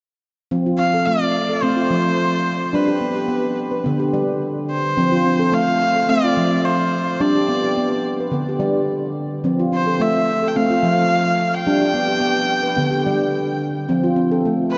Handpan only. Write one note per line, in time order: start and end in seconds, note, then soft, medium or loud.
0.51 1.63 F3 medium
0.51 0.66 C4 medium
0.66 0.80 F4 medium
0.79 0.94 C4 medium
0.94 1.07 A4 medium
1.07 1.35 A3 medium
1.49 1.63 A4 medium
1.63 1.78 A3 medium
1.63 1.89 C4 medium
1.76 2.05 F4 medium
1.90 2.70 F3 medium
2.73 3.86 G3 medium
2.73 2.89 D4 medium
2.88 3.02 G4 medium
3.01 3.16 B3 medium
3.16 3.30 G4 medium
3.28 3.57 B3 medium
3.71 3.85 B4 medium
3.84 4.11 D3 medium
3.84 4.00 B3 medium
4.00 4.28 G4 medium
4.14 4.93 G3 medium
4.97 6.09 F3 medium
4.97 5.12 C4 medium
5.12 5.25 F4 medium
5.25 5.40 C4 medium
5.39 5.53 A4 medium
5.52 5.81 A3 medium
5.96 6.09 A4 medium
6.09 6.24 A3 medium
6.09 6.34 C4 medium
6.24 6.52 F4 medium
6.37 7.17 F3 medium
7.20 8.32 G3 medium
7.20 7.35 D4 medium
7.35 7.48 G4 medium
7.49 7.63 B3 medium
7.64 7.77 G4 medium
7.78 8.05 B3 medium
8.20 8.33 B4 medium
8.31 8.57 D3 medium
8.31 8.47 B3 medium
8.49 8.76 G4 medium
8.60 9.39 G3 medium
9.44 10.55 F3 medium
9.44 9.59 C4 medium
9.59 9.72 F4 medium
9.72 9.87 C4 medium
9.87 10.00 A4 medium
10.00 10.27 A3 medium
10.42 10.55 A4 medium
10.56 10.70 A3 medium
10.56 10.81 C4 medium
10.70 10.98 F4 medium
10.83 11.63 F3 medium
11.67 12.78 G3 medium
11.67 11.81 D4 medium
11.82 11.94 G4 medium
11.94 12.09 B3 medium
12.08 12.22 G4 medium
12.21 12.49 B3 medium
12.63 12.77 B4 medium
12.77 13.03 D3 medium
12.77 12.92 B3 medium
12.91 13.20 G4 medium
13.06 13.86 G3 medium
13.89 14.78 F3 medium
13.89 14.04 C4 medium
14.04 14.17 F4 medium
14.16 14.31 C4 medium
14.32 14.45 A4 medium
14.45 14.73 A3 medium